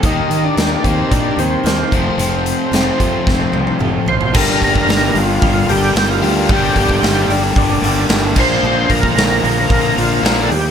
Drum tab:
CC |----------------|----------------|x---------------|--------------x-|
HH |x-x-x-x-x-x-x-x-|x-x-x-x---------|--o-o-o-o-o-o-o-|o-o-o-o-o-o-o---|
SD |----o-------o---|----o---o-------|-o--o-------o---|----o-------o---|
T1 |----------------|----------oo----|----------------|----------------|
T2 |----------------|------------o---|----------------|----------------|
FT |----------------|--------------oo|----------------|----------------|
BD |o-----o-o-----o-|------o-o-------|o-oo----o-------|o-oo----o-----o-|

CC |----------------|
HH |--o-o-o-o-o-o-o-|
SD |----o-------o---|
T1 |----------------|
T2 |----------------|
FT |----------------|
BD |--oo----o-------|